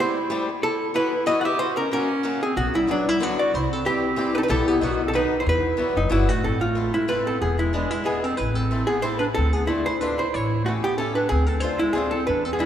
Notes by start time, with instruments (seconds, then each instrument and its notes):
0.00 steel-string acoustic guitar G3 A3 C4 E4 G4, clarinet E4, hollow-body jazz guitar C5
0.30 steel-string acoustic guitar G3 A3 C4 E4 G4
0.62 clarinet E4, hollow-body jazz guitar A4
0.94 steel-string acoustic guitar E3 F#3 B3 E4 F#4, clarinet E4, hollow-body jazz guitar B4
1.26 steel-string acoustic guitar E3 F#3 B3 E4 F#4, clarinet F#4, hollow-body jazz guitar D#5
1.39 clarinet A4, hollow-body jazz guitar F#5
1.44 clarinet G4, hollow-body jazz guitar E5
1.59 clarinet F#4, hollow-body jazz guitar C5
1.77 clarinet C#4, hollow-body jazz guitar A#4
1.91 steel-string acoustic guitar C#3 F#3 A#3 C#4 F#4, clarinet C#4, hollow-body jazz guitar A#4
2.23 steel-string acoustic guitar C#3 F#3 A#3 C#4 F#4
2.43 clarinet C4, hollow-body jazz guitar G#4
2.57 upright bass B1, clarinet B3, hollow-body jazz guitar F#4
2.75 clarinet G3, hollow-body jazz guitar E4
2.87 steel-string acoustic guitar D3 F#3 B3 D4 F#4, clarinet F#3, hollow-body jazz guitar D4
3.07 clarinet G3, hollow-body jazz guitar E4
3.20 steel-string acoustic guitar D3 F#3 B3 D4 F#4, clarinet B3, hollow-body jazz guitar F#4
3.39 clarinet F#4, hollow-body jazz guitar D5
3.54 upright bass C2, clarinet E4, hollow-body jazz guitar C5
3.71 clarinet C4, hollow-body jazz guitar A4
3.85 steel-string acoustic guitar E3 G3 C4 E4 G4, clarinet C4, hollow-body jazz guitar G4
4.16 steel-string acoustic guitar E3 G3 C4 E4 G4
4.35 clarinet C4 D#4, hollow-body jazz guitar A4 B4
4.43 clarinet D#4, hollow-body jazz guitar B4
4.48 upright bass B1, steel-string acoustic guitar E3 G3 B3 E4 G4, clarinet E4, hollow-body jazz guitar A4
4.68 clarinet B3, hollow-body jazz guitar G4
4.81 upright bass B1, steel-string acoustic guitar D#3 F#3 B3 D#4 F#4, clarinet B3, hollow-body jazz guitar F#4
5.06 clarinet C4, hollow-body jazz guitar A4
5.13 steel-string acoustic guitar D#3 F#3 B3 D#4 F#4, clarinet D#4, hollow-body jazz guitar B4
5.38 clarinet E4, hollow-body jazz guitar C5
5.46 upright bass E2, clarinet E4, hollow-body jazz guitar B4
5.77 steel-string acoustic guitar F#3 G3 B3 E4 F#4
5.95 upright bass F#1, clarinet F#3, hollow-body jazz guitar D#4
6.09 upright bass G1, steel-string acoustic guitar F#3 G3 B3 E4 F#4, clarinet G3, hollow-body jazz guitar E4
6.28 upright bass A1, clarinet A3, hollow-body jazz guitar F#4
6.43 upright bass A1, clarinet C4, hollow-body jazz guitar A4
6.61 clarinet A3, hollow-body jazz guitar F4
6.75 steel-string acoustic guitar A3 C4 E4 A4
6.93 clarinet G#3, hollow-body jazz guitar E4
7.08 steel-string acoustic guitar A3 C4 E4 A4, clarinet E4, hollow-body jazz guitar B4
7.25 clarinet C4, hollow-body jazz guitar A4
7.40 upright bass E1, clarinet B3, hollow-body jazz guitar G#4
7.58 clarinet G#3, hollow-body jazz guitar E4
7.73 steel-string acoustic guitar G#3 B3 E4 G#4, clarinet G#3, hollow-body jazz guitar D4
7.91 clarinet G#3, hollow-body jazz guitar E4
8.04 steel-string acoustic guitar G#3 B3 E4 G#4, clarinet B3, hollow-body jazz guitar G#4
8.23 clarinet C4, hollow-body jazz guitar A4
8.37 upright bass A1, clarinet E4, hollow-body jazz guitar B4
8.54 clarinet C4, hollow-body jazz guitar A4
8.71 steel-string acoustic guitar A3 C4 E4 A4
8.87 clarinet B3, hollow-body jazz guitar G#4
9.02 steel-string acoustic guitar A3 C4 E4 A4, clarinet E4, hollow-body jazz guitar C5
9.19 clarinet D4, hollow-body jazz guitar B4
9.34 upright bass D2, clarinet C4, hollow-body jazz guitar A4
9.53 clarinet B3, hollow-body jazz guitar G#4
9.67 clarinet A3, steel-string acoustic guitar C4 D4 F4 A4, hollow-body jazz guitar E4
9.84 clarinet E4, hollow-body jazz guitar C5
9.99 steel-string acoustic guitar C4 D4 F4 A4, clarinet D4, hollow-body jazz guitar B4
10.17 clarinet E4, hollow-body jazz guitar C5
10.31 upright bass A1, clarinet E4, hollow-body jazz guitar C#5
10.64 clarinet A3, steel-string acoustic guitar C#4 E4, hollow-body jazz guitar F#4
10.68 steel-string acoustic guitar G4 A4
10.81 clarinet B3, hollow-body jazz guitar G4
10.97 clarinet C#4, steel-string acoustic guitar C#4 E4 G4 A4, hollow-body jazz guitar A4
11.14 clarinet D4, hollow-body jazz guitar B4
11.29 upright bass D2, clarinet C4, hollow-body jazz guitar G#4
11.47 clarinet C4, hollow-body jazz guitar A4
11.60 steel-string acoustic guitar C4 D4 F4 A4, clarinet F4, hollow-body jazz guitar C5
11.79 clarinet G#3, hollow-body jazz guitar E4
11.93 steel-string acoustic guitar C4 D4 F4, clarinet C4, hollow-body jazz guitar G#4
11.97 steel-string acoustic guitar A4
12.11 clarinet C4, hollow-body jazz guitar A4
12.27 upright bass E2, clarinet D4, hollow-body jazz guitar B4
12.45 clarinet C4, hollow-body jazz guitar A4
12.53 clarinet B3, hollow-body jazz guitar G#4
12.59 clarinet G#3, steel-string acoustic guitar B3 D4 E4 G#4, hollow-body jazz guitar E4